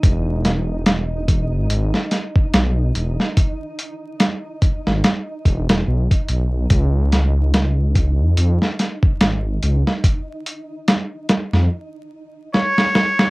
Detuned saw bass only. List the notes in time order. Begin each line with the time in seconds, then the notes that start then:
0.04 E1
1.53 G#1
1.70 G#1
2.54 B1
2.96 E1
4.87 G#1
5.46 E1
5.87 B1
6.29 B1
6.71 C#2
8.20 F2
8.37 F2
9.21 G#1
9.63 C#2
11.53 F2